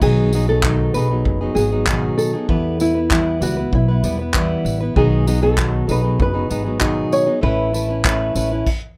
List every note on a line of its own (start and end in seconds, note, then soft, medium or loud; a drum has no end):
0.01 0.90 B1 medium
0.01 0.32 B2 medium
0.01 0.33 D#3 medium
0.01 0.31 F#3 medium
0.01 0.32 B3 medium
0.01 0.33 D#4 medium
0.01 0.45 G#4 loud
0.01 0.34 G#4 medium
0.01 kick medium
0.01 crash medium
0.33 0.48 F#3 medium
0.33 0.49 B3 medium
0.33 0.48 D#4 medium
0.33 0.47 G#4 medium
0.33 tambourine medium
0.48 0.64 F#3 soft
0.48 0.64 B3 soft
0.48 0.64 D#4 soft
0.48 0.64 G#4 soft
0.48 0.92 A4 loud
0.63 0.95 B2 medium
0.63 0.95 D#3 medium
0.63 0.93 F#3 medium
0.63 0.94 B3 medium
0.63 0.95 D#4 medium
0.63 kick loud
0.63 clap loud
0.94 1.20 B1 medium
0.94 1.10 F#3 medium
0.94 1.11 B3 soft
0.94 1.10 D#4 medium
0.94 1.09 G#4 medium
0.94 1.55 B4 medium
0.94 tambourine medium
1.10 1.42 F#3 soft
1.10 1.41 B3 soft
1.10 1.41 D#4 soft
1.10 1.40 G#4 soft
1.25 1.51 F#1 medium
1.25 kick loud
1.41 1.55 F#3 soft
1.41 1.56 B3 soft
1.41 1.57 D#4 soft
1.41 1.56 G#4 soft
1.55 2.07 G#1 medium
1.55 1.72 F#3 medium
1.55 1.72 B3 medium
1.55 1.71 D#4 medium
1.55 2.17 G#4 medium
1.55 1.70 G#4 medium
1.55 tambourine medium
1.72 1.87 F#3 soft
1.72 1.88 B3 soft
1.72 1.88 D#4 soft
1.72 1.87 G#4 soft
1.87 2.34 B2 medium
1.87 2.34 D#3 medium
1.87 2.34 F#3 medium
1.87 2.34 B3 medium
1.87 2.33 D#4 medium
1.87 2.32 G#4 medium
1.87 kick loud
1.87 clap loud
2.18 2.76 A4 medium
2.18 tambourine medium
2.33 2.49 F#3 soft
2.33 2.48 B3 soft
2.33 2.50 D#4 soft
2.33 2.49 G#4 medium
2.48 3.38 E2 medium
2.48 2.80 E3 medium
2.48 2.78 G3 medium
2.48 2.79 B3 medium
2.48 2.79 E4 medium
2.48 2.80 B4 medium
2.48 kick loud
2.79 2.95 G3 medium
2.79 2.95 B3 medium
2.79 2.95 E4 medium
2.79 3.42 E4 medium
2.79 2.94 B4 medium
2.79 tambourine medium
2.95 3.11 B3 soft
2.95 3.11 E4 soft
2.95 3.11 B4 medium
3.11 3.42 E3 medium
3.11 3.40 G3 medium
3.11 3.41 B3 medium
3.11 3.42 E4 medium
3.11 3.43 B4 medium
3.11 kick loud
3.11 clap loud
3.41 3.67 C#2 medium
3.41 3.57 G3 medium
3.41 3.57 B3 medium
3.41 3.57 E4 medium
3.41 3.74 F#4 medium
3.41 3.56 B4 medium
3.41 tambourine medium
3.57 3.89 B3 soft
3.57 3.89 E4 soft
3.57 3.87 B4 medium
3.72 3.98 B1 medium
3.72 4.62 E4 medium
3.72 kick loud
3.88 4.03 B3 soft
3.88 4.04 E4 soft
3.88 4.04 B4 medium
4.03 4.54 E2 medium
4.03 4.19 G3 medium
4.03 4.19 B3 medium
4.03 4.19 E4 medium
4.03 4.18 B4 medium
4.03 tambourine medium
4.19 4.34 B3 soft
4.19 4.35 E4 soft
4.19 4.34 B4 soft
4.34 4.81 E3 medium
4.34 4.81 G3 medium
4.34 4.81 B3 medium
4.34 4.81 E4 medium
4.34 4.79 B4 medium
4.34 kick loud
4.34 clap loud
4.65 4.90 A1 medium
4.65 tambourine medium
4.81 4.96 B3 soft
4.81 4.97 E4 soft
4.81 4.96 B4 medium
4.96 5.85 B1 medium
4.96 5.27 B2 medium
4.96 5.27 D#3 medium
4.96 5.25 F#3 medium
4.96 5.26 B3 medium
4.96 5.27 D#4 medium
4.96 5.40 G#4 medium
4.96 5.28 G#4 medium
4.96 kick loud
5.27 5.42 F#3 medium
5.27 5.42 B3 medium
5.27 5.41 D#4 medium
5.27 5.40 G#4 medium
5.27 tambourine medium
5.41 5.56 F#3 soft
5.41 5.57 B3 medium
5.41 5.57 D#4 soft
5.41 5.57 G#4 medium
5.41 5.90 A4 loud
5.57 5.88 B2 medium
5.57 5.89 D#3 medium
5.57 5.86 F#3 medium
5.57 5.87 B3 medium
5.57 5.88 D#4 medium
5.57 kick loud
5.57 clap loud
5.87 6.14 B1 medium
5.87 6.03 F#3 medium
5.87 6.03 B3 medium
5.87 6.03 D#4 medium
5.87 6.02 G#4 medium
5.87 6.19 B4 medium
5.87 tambourine medium
6.03 6.35 F#3 soft
6.03 6.34 B3 soft
6.03 6.33 D#4 soft
6.03 6.32 G#4 medium
6.20 6.45 F#1 loud
6.20 6.79 B4 loud
6.20 kick loud
6.34 6.48 F#3 soft
6.34 6.49 B3 soft
6.34 6.50 D#4 medium
6.34 6.50 G#4 medium
6.49 7.01 G#1 medium
6.49 6.65 F#3 soft
6.49 6.65 B3 medium
6.49 6.64 D#4 medium
6.49 6.63 G#4 medium
6.49 tambourine medium
6.64 6.79 F#3 soft
6.64 6.79 B3 soft
6.64 6.79 D#4 soft
6.64 6.80 G#4 medium
6.80 7.27 B2 medium
6.80 7.27 D#3 medium
6.80 7.27 F#3 medium
6.80 7.27 B3 medium
6.80 7.26 D#4 medium
6.80 7.25 G#4 medium
6.80 kick loud
6.80 clap loud
7.12 7.43 C#5 medium
7.12 tambourine medium
7.26 7.41 F#3 soft
7.26 7.42 B3 soft
7.26 7.42 D#4 medium
7.26 7.42 G#4 medium
7.41 8.32 A1 loud
7.41 7.72 A3 medium
7.41 7.73 C#4 medium
7.41 7.74 E4 medium
7.41 8.97 B4 loud
7.41 7.74 B4 medium
7.41 kick medium
7.73 7.89 A3 medium
7.73 7.89 C#4 medium
7.73 7.89 E4 medium
7.73 7.87 B4 medium
7.73 tambourine medium
7.89 8.04 C#4 soft
7.89 8.05 E4 soft
7.89 8.04 B4 medium
8.04 8.34 A3 medium
8.04 8.35 C#4 medium
8.04 8.36 E4 medium
8.04 8.36 B4 medium
8.04 kick loud
8.04 clap loud
8.35 8.61 A1 medium
8.35 8.51 A3 medium
8.35 8.51 C#4 medium
8.35 8.52 E4 medium
8.35 8.50 B4 medium
8.35 tambourine medium
8.51 8.68 C#4 soft
8.51 8.67 E4 medium
8.51 8.67 B4 medium
8.66 kick loud
8.66 crash medium